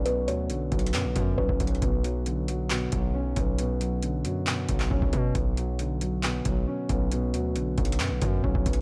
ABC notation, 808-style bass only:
X:1
M:4/4
L:1/16
Q:1/4=136
K:Bm
V:1 name="808-style bass" clef=bass
B,,,2 D,,2 B,,,2 B,,,2 F,, B,,, F,,2 B,,, B,,, B,,,2 | B,,,8- B,,,2 B,,,4 B,,,2- | B,,,6 F,,4 B,,,2 B,,, B,,, B,,2 | B,,,8- B,,,2 B,,,2 z2 B,,,2- |
B,,,2 D,,2 B,,,2 B,,,2 F,, B,,, F,,2 B,,, B,,, B,,,2 |]